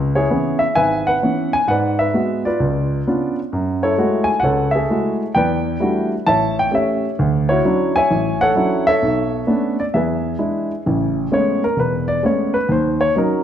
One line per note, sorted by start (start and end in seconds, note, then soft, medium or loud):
0.00 0.24 C#2 medium
0.15 1.03 E4 medium
0.15 1.03 G#4 medium
0.15 0.57 C#5 medium
0.30 0.62 E3 medium
0.30 0.62 B3 medium
0.30 0.63 C#4 medium
0.59 0.74 E5 medium
0.75 1.16 G#1 medium
0.75 1.07 B4 medium
0.75 1.64 E5 medium
0.75 1.07 G#5 loud
1.07 1.64 B4 medium
1.07 1.54 F#5 medium
1.23 1.54 E3 soft
1.23 1.55 B3 soft
1.23 1.54 C#4 medium
1.53 1.68 G#5 medium
1.67 2.07 G#2 medium
1.67 1.99 B4 medium
1.67 2.44 D5 medium
1.67 1.96 F#5 medium
1.99 2.45 B4 medium
1.99 2.41 E5 medium
2.14 2.46 G#3 medium
2.14 2.46 B3 soft
2.14 2.46 F#4 medium
2.45 3.07 F4 medium
2.45 3.33 B4 medium
2.45 3.33 D5 medium
2.60 2.99 C#2 medium
3.07 3.39 B3 medium
3.07 3.39 C#4 soft
3.07 3.39 D4 soft
3.07 3.39 F4 medium
3.53 3.92 F#2 medium
3.83 3.97 E4 medium
3.83 4.43 A4 medium
3.83 4.25 C#5 medium
3.98 4.30 G#3 medium
3.98 4.30 A3 medium
3.98 4.30 E4 soft
3.98 4.30 F#4 medium
4.24 4.42 G#5 medium
4.40 4.83 C#2 medium
4.40 4.83 C#3 medium
4.40 4.70 F#5 medium
4.44 4.74 A4 medium
4.44 5.31 C#5 medium
4.71 5.15 E5 medium
4.76 5.32 G#4 medium
4.76 5.32 A4 medium
4.90 5.22 G#3 medium
4.90 5.22 A3 soft
4.90 5.22 E4 soft
4.90 5.22 F#4 medium
5.35 5.75 E2 medium
5.35 6.24 B4 medium
5.35 6.24 D5 medium
5.35 6.07 G5 medium
5.80 6.13 G3 medium
5.80 6.13 A3 medium
5.80 6.13 D4 soft
5.80 6.13 E4 medium
5.80 6.13 F#4 medium
6.26 6.67 A1 medium
6.26 6.73 C#5 medium
6.26 6.73 E5 medium
6.26 6.55 A5 loud
6.59 6.72 G5 medium
6.71 7.04 A3 medium
6.71 7.04 C#4 medium
6.71 7.04 G4 medium
6.71 7.16 C#5 medium
6.71 7.09 E5 medium
7.19 7.59 D2 medium
7.49 7.64 E4 medium
7.49 8.38 F#4 medium
7.49 7.92 C#5 medium
7.65 7.97 F#3 medium
7.65 7.97 C#4 soft
7.65 7.97 D4 medium
7.65 7.97 E4 medium
7.96 8.41 C#5 medium
7.96 8.84 E5 medium
7.96 8.38 G#5 loud
8.11 8.50 A1 medium
8.41 8.87 A4 medium
8.41 8.87 C#5 medium
8.41 8.83 F#5 loud
8.55 8.88 F#3 medium
8.55 8.88 C#4 soft
8.55 8.88 D4 soft
8.55 8.88 E4 medium
8.87 9.75 A4 medium
8.87 9.75 C#5 medium
8.87 9.74 E5 loud
9.02 9.42 B1 medium
9.47 9.80 A3 medium
9.47 9.80 B3 medium
9.47 9.79 C#4 soft
9.47 9.80 D4 medium
9.80 9.85 D5 medium
9.94 10.34 E2 medium
9.94 10.82 G#4 medium
9.94 10.82 B4 medium
9.94 10.66 E5 medium
10.39 10.71 G#3 medium
10.39 10.71 D4 soft
10.39 10.71 E4 medium
10.86 11.25 A1 medium
10.86 11.25 C#3 medium
11.32 11.63 G#3 medium
11.32 11.63 A3 soft
11.32 11.64 B3 soft
11.32 11.63 C#4 medium
11.32 11.62 C#5 medium
11.64 11.77 A#4 medium
11.77 12.17 E1 medium
11.77 12.08 B4 medium
12.08 12.22 D5 medium
12.23 12.55 G#3 soft
12.23 12.55 A3 soft
12.23 12.55 B3 soft
12.23 12.55 C#4 medium
12.23 12.54 C#5 medium
12.54 12.68 B4 medium
12.69 13.08 D#2 medium
12.69 13.00 C5 medium
13.01 13.15 C#5 loud
13.16 13.44 F#3 medium
13.16 13.44 C#4 soft
13.16 13.44 D#4 medium
13.16 13.44 A#4 medium